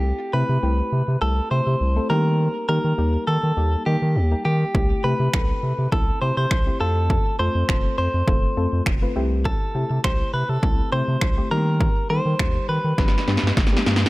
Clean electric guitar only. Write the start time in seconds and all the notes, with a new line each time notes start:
Already playing: G4
0.33 B4
1.22 A4
1.51 C5
2.10 A#4
2.69 A#4
3.27 A4
3.86 G4
4.45 G4
5.04 B4
5.92 A4
6.22 C5
6.37 C5
6.81 A4
7.39 C5
7.98 C5
9.45 A4
10.04 C5
10.34 B4
10.49 A4
10.92 C5
11.51 A#4
12.10 C5
12.69 B4